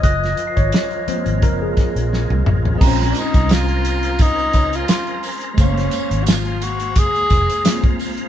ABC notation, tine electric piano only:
X:1
M:4/4
L:1/16
Q:"Swing 16ths" 1/4=87
K:Bbm
V:1 name="Tine electric piano"
e3 d3 c2 B A2 z4 z | [A,CDF]16 | [A,=A,B,cf]12 [_A,B,CF]4 |]
V:2 name="Tine electric piano"
z6 [F,A,B,C]8- [F,A,B,C]2 | z16 | z16 |]